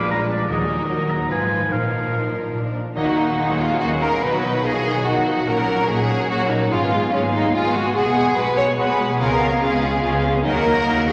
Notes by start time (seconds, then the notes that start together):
Already playing: A#1 A#2 F3 G#3 D4 F4 A#4 B4 A#5 B5 D6
0.00 D5
0.10 G#4 A#5
0.20 D4
0.30 G#3 D5
0.40 F3
0.49 D#2 D#3 F#3 D#4 G#4 A#4 D#5
0.60 F#3
0.69 A#4
0.79 F#4
0.89 F#4 D#5
0.99 A#5
1.09 F#5 A#5
1.19 A#5
1.29 G#1 G#2 F3 F4 B4 G#5
1.40 G#3
1.50 F4
1.61 B4
1.69 A#1 A#2 D#4 A#4 F5
1.82 A#3
1.92 D#4
2.02 A#4
2.13 F4
2.24 D#5
2.33 A#5
2.44 D#5
2.54 A#2 D4
2.64 A#3
2.75 D4
2.84 A#4
2.95 D#2 D#3 F#3 A#3 D#4 D#5 F#5
3.06 F#3 F#4 F#5
3.16 A#3 D#4 D#5
3.28 F#3 F#4 F#5
3.38 D#2 D#3 G#3 A#3 D#4 A#4 D#5
3.48 F#3 F#4 F#5
3.59 A#3 D#4 F4 B4 D#5
3.71 F#3 F#4 F#5
3.80 D#2 D#3 A#3 C#4 D#4 F#4 A#4 D#5 F5
3.92 F#3 F#4 F#5
4.01 A#3 D#4 A#4 D#5
4.12 F#3 F#4 F#5
4.22 B1 B2 D#3 F#3 B3 D#4 B4 D#5
4.33 F#3 F#4 F#5
4.43 D#3 F#3 D#4 D#5
4.54 F#3 F#4 F#5
4.63 B1 B2 D#3 F3 D#4 G#4 D#5
4.74 F#3 F#4 F#5
4.84 D#3 D#4 F4 D#5
4.95 F#3 F#4 F#5
5.05 B1 B2 D#3 D#4 F#4 D#5 F#5
5.15 F#3 F#4 F#5
5.26 D#3 F3 F#3 D#4 D#5
5.37 F#3 F#4 F#5
5.47 A#1 A#2 F#3 A#3 C#4 F#4 A#4 F#5 A#5
5.57 F#3 A#4 F#5
5.67 F#3 A#3 F#4 A#5
5.79 F#3 A#4 F#5
5.88 A#1 A#2 A#3 C#4 F#4 G#4 D#5 A#5
5.99 F#3 A#4 F#5
6.09 A#3 F#4 G#4 C#5 A#5
6.19 F#3 A#4 F#5
6.30 A#1 A#2 F#3 A#3 F#4 C#5 A#5
6.40 F#3 A#4 F#5
6.50 F#3 A#3 D#4 F#4 A#5
6.62 F#3 A#4 F#5
6.71 G#1 G#2 G#3 C#4 F4 F5
6.82 B3 G#4 G#5
6.91 G#3 B3 F4 F5
7.01 B3 G#4 G#5
7.12 G#1 G#2 G#3 A#3 C#4 F4 F5
7.22 B3 G#4 G#5
7.33 G#3 D#4 F4 F#4 F5
7.43 B3 G#4 G#5
7.54 G#1 G#2 G#3 F4 F5 G#5
7.63 B3 G#4 G#5
7.74 G#3 F4 F#4 F5
7.85 B3 G#4 G#5
7.95 B1 B2 G#3 B3 F#4 G#4 F#5
8.05 B3 G#4 G#5
8.16 G#3 F#4 F#5
8.26 B3 G#4 G#5
8.37 B1 B2 G#3 F#4 B4 F#5
8.47 B3 G#4 G#5
8.57 G#3 F#4 G#4 C#5 F#5
8.67 B3 G#4 G#5
8.78 B1 B2 G#3 B3 F#4 B4 F#5
8.88 B3 G#4 G#5
8.99 G#3 F#4 F#5
9.09 B3 G#4 G#5
9.20 C#2 C#3 G#3 B3 C#4 F4 A#4 F5
9.30 B3 G#4 G#5
9.40 G#3 C#4 F4 F5
9.50 B3 G#4 G#5
9.61 C#2 C#3 G#3 B3 C#4 F4 G#4 F5
9.72 B3 G#4 G#5
9.82 C#4 F4 F#4 F5
9.92 B3 G#4 G#5
10.01 C#2 C#3 C#4 F4 F5
10.12 B3 G#4 G#5
10.23 G#3 C#4 F4 F5
10.33 B3 G#4 G#5
10.43 D#2 D#3 F#3 A#3 D#4 A#4 D#5
10.54 A#3 F#4 F#5
10.63 F#3 D#4 D#5
10.75 A#3 F#4 F#5
10.86 D#2 D#3 F#3 D#4 A#4 D#5
10.96 A#3 F#4 F#5
11.07 F#3 D#4 G#4 B4 D#5